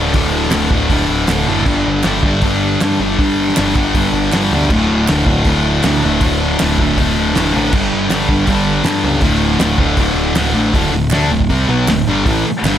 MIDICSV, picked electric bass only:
0, 0, Header, 1, 2, 480
1, 0, Start_track
1, 0, Tempo, 378072
1, 198, Time_signature, 4, 2, 24, 8
1, 16227, End_track
2, 0, Start_track
2, 0, Title_t, "Picked electric bass"
2, 0, Program_c, 0, 34
2, 0, Note_on_c, 0, 26, 102
2, 155, Note_off_c, 0, 26, 0
2, 185, Note_on_c, 0, 26, 93
2, 611, Note_off_c, 0, 26, 0
2, 671, Note_on_c, 0, 26, 93
2, 885, Note_off_c, 0, 26, 0
2, 893, Note_on_c, 0, 26, 101
2, 1115, Note_off_c, 0, 26, 0
2, 1131, Note_on_c, 0, 26, 106
2, 1354, Note_off_c, 0, 26, 0
2, 1376, Note_on_c, 0, 26, 84
2, 1598, Note_off_c, 0, 26, 0
2, 1622, Note_on_c, 0, 26, 94
2, 1841, Note_off_c, 0, 26, 0
2, 1879, Note_on_c, 0, 30, 101
2, 2091, Note_off_c, 0, 30, 0
2, 2115, Note_on_c, 0, 31, 100
2, 2329, Note_off_c, 0, 31, 0
2, 2369, Note_on_c, 0, 31, 107
2, 2577, Note_off_c, 0, 31, 0
2, 2602, Note_on_c, 0, 31, 93
2, 2814, Note_off_c, 0, 31, 0
2, 2825, Note_on_c, 0, 31, 104
2, 3045, Note_off_c, 0, 31, 0
2, 3071, Note_on_c, 0, 31, 100
2, 3499, Note_off_c, 0, 31, 0
2, 3583, Note_on_c, 0, 43, 83
2, 3787, Note_off_c, 0, 43, 0
2, 3800, Note_on_c, 0, 31, 102
2, 4015, Note_off_c, 0, 31, 0
2, 4041, Note_on_c, 0, 31, 97
2, 4466, Note_off_c, 0, 31, 0
2, 4542, Note_on_c, 0, 31, 88
2, 4748, Note_off_c, 0, 31, 0
2, 4764, Note_on_c, 0, 31, 89
2, 4978, Note_off_c, 0, 31, 0
2, 5008, Note_on_c, 0, 31, 92
2, 5221, Note_off_c, 0, 31, 0
2, 5238, Note_on_c, 0, 31, 85
2, 5455, Note_off_c, 0, 31, 0
2, 5481, Note_on_c, 0, 31, 91
2, 5698, Note_off_c, 0, 31, 0
2, 5736, Note_on_c, 0, 38, 94
2, 5946, Note_off_c, 0, 38, 0
2, 5981, Note_on_c, 0, 26, 101
2, 6189, Note_off_c, 0, 26, 0
2, 6232, Note_on_c, 0, 26, 85
2, 6435, Note_off_c, 0, 26, 0
2, 6463, Note_on_c, 0, 26, 87
2, 6671, Note_off_c, 0, 26, 0
2, 6679, Note_on_c, 0, 26, 87
2, 6897, Note_off_c, 0, 26, 0
2, 6920, Note_on_c, 0, 26, 92
2, 7348, Note_off_c, 0, 26, 0
2, 7423, Note_on_c, 0, 38, 83
2, 7631, Note_off_c, 0, 38, 0
2, 7668, Note_on_c, 0, 26, 100
2, 7874, Note_off_c, 0, 26, 0
2, 7896, Note_on_c, 0, 26, 92
2, 8317, Note_off_c, 0, 26, 0
2, 8402, Note_on_c, 0, 26, 84
2, 8595, Note_off_c, 0, 26, 0
2, 8603, Note_on_c, 0, 26, 107
2, 8820, Note_off_c, 0, 26, 0
2, 8845, Note_on_c, 0, 26, 106
2, 9060, Note_off_c, 0, 26, 0
2, 9099, Note_on_c, 0, 26, 88
2, 9308, Note_off_c, 0, 26, 0
2, 9335, Note_on_c, 0, 26, 94
2, 9546, Note_off_c, 0, 26, 0
2, 9599, Note_on_c, 0, 33, 99
2, 9799, Note_off_c, 0, 33, 0
2, 9827, Note_on_c, 0, 31, 101
2, 10032, Note_off_c, 0, 31, 0
2, 10073, Note_on_c, 0, 31, 93
2, 10275, Note_off_c, 0, 31, 0
2, 10289, Note_on_c, 0, 31, 88
2, 10502, Note_off_c, 0, 31, 0
2, 10526, Note_on_c, 0, 31, 97
2, 10740, Note_off_c, 0, 31, 0
2, 10756, Note_on_c, 0, 31, 98
2, 11183, Note_off_c, 0, 31, 0
2, 11238, Note_on_c, 0, 43, 94
2, 11454, Note_off_c, 0, 43, 0
2, 11476, Note_on_c, 0, 37, 104
2, 11693, Note_off_c, 0, 37, 0
2, 11706, Note_on_c, 0, 26, 109
2, 12136, Note_off_c, 0, 26, 0
2, 12176, Note_on_c, 0, 26, 87
2, 12400, Note_off_c, 0, 26, 0
2, 12421, Note_on_c, 0, 26, 93
2, 12643, Note_off_c, 0, 26, 0
2, 12666, Note_on_c, 0, 26, 102
2, 12857, Note_off_c, 0, 26, 0
2, 12865, Note_on_c, 0, 26, 83
2, 13102, Note_off_c, 0, 26, 0
2, 13124, Note_on_c, 0, 26, 98
2, 13352, Note_off_c, 0, 26, 0
2, 13364, Note_on_c, 0, 33, 91
2, 13592, Note_off_c, 0, 33, 0
2, 13636, Note_on_c, 0, 26, 98
2, 13850, Note_off_c, 0, 26, 0
2, 13858, Note_on_c, 0, 26, 84
2, 14093, Note_off_c, 0, 26, 0
2, 14116, Note_on_c, 0, 38, 90
2, 14333, Note_off_c, 0, 38, 0
2, 14340, Note_on_c, 0, 26, 86
2, 14573, Note_off_c, 0, 26, 0
2, 14604, Note_on_c, 0, 36, 101
2, 14820, Note_off_c, 0, 36, 0
2, 14827, Note_on_c, 0, 35, 100
2, 15056, Note_off_c, 0, 35, 0
2, 15077, Note_on_c, 0, 26, 72
2, 15301, Note_off_c, 0, 26, 0
2, 15328, Note_on_c, 0, 31, 97
2, 15547, Note_off_c, 0, 31, 0
2, 15561, Note_on_c, 0, 33, 104
2, 15783, Note_off_c, 0, 33, 0
2, 16029, Note_on_c, 0, 31, 83
2, 16227, Note_off_c, 0, 31, 0
2, 16227, End_track
0, 0, End_of_file